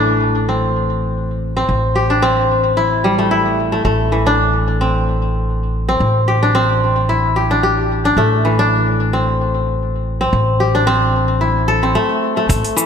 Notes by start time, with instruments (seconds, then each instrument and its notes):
Already playing: upright bass A1, kora E3 A3 D4 G4
0.49 kora C4
1.57 kora C4
1.69 upright bass A1
1.95 kora G4
2.10 kora D4
2.22 kora C4
2.77 kora E4
3.04 kora G3
3.19 kora A3
3.31 kora E4
3.72 kora A3
3.85 upright bass A1, kora A3
4.12 kora E3
4.26 kora D4
4.81 kora C4
5.89 kora C4
6.00 upright bass A1
6.28 kora G4
6.43 kora D4
6.55 kora C4
7.09 kora E4
7.36 kora G4
7.51 kora D4
7.63 kora G4
8.05 kora D4
8.17 upright bass A1, kora A3
8.45 kora E3
8.59 kora D4
9.13 kora C4
10.21 kora C4
10.33 upright bass A1
10.60 kora G4
10.75 kora D4
10.87 kora C4
11.41 kora E4
11.68 kora A4
11.83 kora C4
11.95 kora A3
12.37 kora A3
12.49 upright bass A1, kora A3, kick, open hi-hat, cabasa
12.64 open hi-hat
12.77 kora E3, cabasa